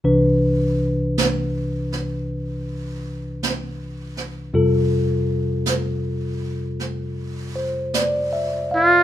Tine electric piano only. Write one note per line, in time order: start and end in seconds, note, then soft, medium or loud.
0.04 4.54 C2 soft
0.04 4.53 C3 soft
0.04 4.54 E3 soft
0.04 4.54 D4 soft
0.04 4.54 B4 soft
4.54 9.03 F2 soft
4.54 9.03 C3 soft
4.54 9.03 G3 soft
4.54 9.03 F4 soft
4.54 9.03 A4 soft
7.56 8.15 C5 soft
7.95 8.67 D5 soft
8.33 8.92 E5 soft
8.71 9.03 F5 soft